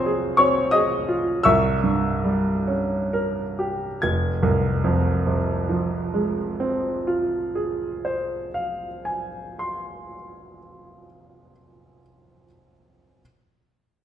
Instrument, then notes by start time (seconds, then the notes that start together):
grand piano
Already playing: C2 F3 C4 F4 G#4 C5 C#5 D#5 G#5 C6 C#6 D#6
0.06 G#4
0.37 C4 C#5 C#6
0.71 G#4 D#5 D#6
1.08 F4
1.43 C2 E5 C#6 E6
1.83 G2
2.24 G3
2.68 C#4
3.13 A#4
3.59 G4
4.02 F1 G#6
4.43 C2
4.84 F2
5.27 C3
5.69 F3
6.14 G#3
6.60 C4
7.07 F4
7.55 G#4
8.05 C5
8.54 F5
9.05 G#5
9.59 C6